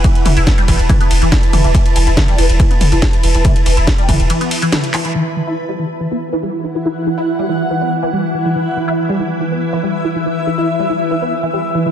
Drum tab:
RD |x-x-x-x-x-x---x-|x-x-x-x-x-x---x-|x-x---x-x-x-x-x-|----------------|
HH |xxoxxxoxxxoxxxox|xxoxxxoxxxoxxxox|xxoxxxoxxxoxxxox|----------------|
CP |----------------|----------------|--------------x-|----------------|
SD |----o-------o---|----o-------o---|----o-------o---|----------------|
T2 |--o-----o-----o-|----o-----o-----|o-----o-----o---|----------------|
BD |o---o-o-o---o---|o---o---o---o---|o---o-o---------|----------------|

RD |----------------|----------------|----------------|
HH |----------------|----------------|----------------|
CP |----------------|----------------|----------------|
SD |----------------|----------------|----------------|
T2 |----------------|----------------|----------------|
BD |----------------|----------------|----------------|